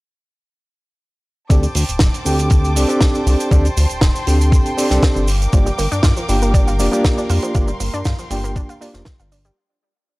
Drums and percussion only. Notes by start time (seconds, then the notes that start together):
1.50 kick, closed hi-hat, cabasa
1.63 closed hi-hat, cabasa
1.75 open hi-hat, cabasa
1.89 closed hi-hat, cabasa
1.99 kick, snare, closed hi-hat, cabasa
2.14 closed hi-hat, cabasa
2.26 open hi-hat, cabasa
2.39 closed hi-hat, cabasa
2.50 kick, closed hi-hat, cabasa
2.65 closed hi-hat, cabasa
2.76 open hi-hat, cabasa
2.89 closed hi-hat, cabasa
3.01 kick, snare, closed hi-hat, cabasa
3.15 closed hi-hat, cabasa
3.27 open hi-hat, cabasa
3.40 closed hi-hat, cabasa
3.51 kick, closed hi-hat, cabasa
3.65 closed hi-hat, cabasa
3.77 open hi-hat, cabasa
3.89 closed hi-hat, cabasa
4.01 kick, snare, closed hi-hat, cabasa
4.16 closed hi-hat, cabasa
4.27 open hi-hat, cabasa
4.41 closed hi-hat, cabasa
4.52 kick, closed hi-hat, cabasa
4.66 closed hi-hat, cabasa
4.78 open hi-hat, cabasa
4.90 snare, closed hi-hat, cabasa
5.03 kick, snare, closed hi-hat, cabasa
5.16 closed hi-hat, cabasa
5.28 open hi-hat, cabasa
5.42 closed hi-hat, cabasa
5.53 kick, closed hi-hat, cabasa
5.67 closed hi-hat, cabasa
5.79 open hi-hat, cabasa
5.92 closed hi-hat, cabasa
6.03 kick, snare, closed hi-hat, cabasa
6.17 closed hi-hat, cabasa
6.29 open hi-hat, cabasa
6.42 closed hi-hat, cabasa
6.54 kick, closed hi-hat, cabasa
6.68 closed hi-hat, cabasa
6.79 open hi-hat, cabasa
6.93 closed hi-hat, cabasa
7.04 kick, snare, closed hi-hat, cabasa
7.17 closed hi-hat, cabasa
7.29 open hi-hat, cabasa
7.42 closed hi-hat, cabasa
7.54 kick, closed hi-hat, cabasa
7.67 closed hi-hat, cabasa
7.80 open hi-hat, cabasa
7.93 closed hi-hat, cabasa
8.05 kick, snare, closed hi-hat, cabasa
8.18 closed hi-hat, cabasa
8.30 open hi-hat, cabasa
8.44 closed hi-hat, cabasa
8.56 kick, closed hi-hat, cabasa
8.69 closed hi-hat, cabasa
8.82 open hi-hat, cabasa
8.93 snare, closed hi-hat, cabasa
9.05 kick, snare, closed hi-hat, cabasa
9.19 closed hi-hat, cabasa
9.32 open hi-hat, cabasa
9.44 closed hi-hat, cabasa